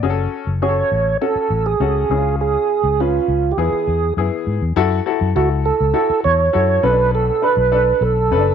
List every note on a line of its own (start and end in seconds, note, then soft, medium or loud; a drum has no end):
0.00 0.26 F#1 medium
0.00 0.46 C#4 medium
0.00 0.46 F#4 medium
0.00 0.10 G#4 medium
0.00 0.17 D5 medium
0.10 0.50 A4 medium
0.47 0.81 F#1 medium
0.62 1.06 C#4 medium
0.62 1.05 F#4 medium
0.62 0.69 G#4 medium
0.62 1.17 C#5 loud
0.68 1.09 A4 medium
0.92 1.14 A1 medium
1.21 1.65 C#4 medium
1.21 1.65 F#4 medium
1.21 1.65 A4 medium
1.21 1.67 A4 medium
1.36 muted fingered electric bass stroke soft
1.50 1.73 A1 medium
1.66 2.36 G#4 medium
1.80 2.03 C#2 medium
1.80 2.09 C#4 medium
1.80 2.10 F#4 medium
1.80 2.10 A4 medium
2.10 2.56 C#2 medium
2.10 2.95 C#3 medium
2.10 2.81 C#4 medium
2.10 2.17 E4 soft
2.10 2.81 G#4 medium
2.17 2.85 F4 medium
2.41 3.01 G#4 medium
2.84 3.18 C#2 medium
3.00 3.43 C#4 medium
3.00 3.43 F4 medium
3.00 3.53 F4 medium
3.00 3.43 B4 medium
3.28 3.51 C#2 medium
3.52 3.58 G4 medium
3.57 3.69 E2 medium
3.57 4.43 E3 medium
3.57 4.01 B3 medium
3.57 4.01 E4 medium
3.57 4.01 G#4 medium
3.57 4.14 G#4 medium
3.73 muted fingered electric bass stroke soft
3.88 4.10 E2 medium
4.17 4.28 F#2 medium
4.17 4.61 B3 medium
4.17 4.61 E4 medium
4.17 4.61 G#4 medium
4.47 4.58 G#2 medium
4.61 4.73 E2 medium
4.76 4.99 F#2 medium
4.76 4.98 E4 loud
4.76 4.98 F#4 medium
4.76 4.98 A4 loud
5.06 5.28 E4 medium
5.06 5.28 F#4 medium
5.06 5.28 A4 medium
5.21 5.32 F#2 medium
5.36 5.70 C#2 loud
5.36 5.79 E4 medium
5.36 5.79 F#4 medium
5.36 5.49 F#4 loud
5.36 5.79 A4 medium
5.65 6.20 A4 loud
5.80 5.92 C#2 medium
5.94 6.38 E4 medium
5.94 6.38 F#4 medium
5.94 6.38 A4 medium
6.10 muted fingered electric bass stroke medium
6.24 6.48 E2 loud
6.24 6.85 C#5 loud
6.53 6.78 F#2 medium
6.53 6.83 E4 medium
6.53 6.83 F#4 medium
6.53 6.82 A4 medium
6.83 7.29 B1 loud
6.83 7.68 B2 medium
6.83 6.90 C#4 medium
6.83 7.31 A4 medium
6.83 7.31 B4 medium
6.83 7.11 B4 loud
6.90 7.34 D4 medium
7.15 7.44 A4 medium
7.42 7.64 D4 medium
7.42 7.64 A4 medium
7.42 7.64 B4 medium
7.42 8.04 B4 loud
7.57 7.92 B1 medium
7.72 8.16 D4 medium
7.72 8.16 A4 medium
7.72 8.16 B4 medium
8.01 8.32 B1 medium
8.01 8.54 A4 medium
8.30 8.54 F#1 medium
8.30 8.38 C#4 medium
8.30 8.54 A4 medium
8.30 8.54 B4 medium
8.38 8.54 D4 medium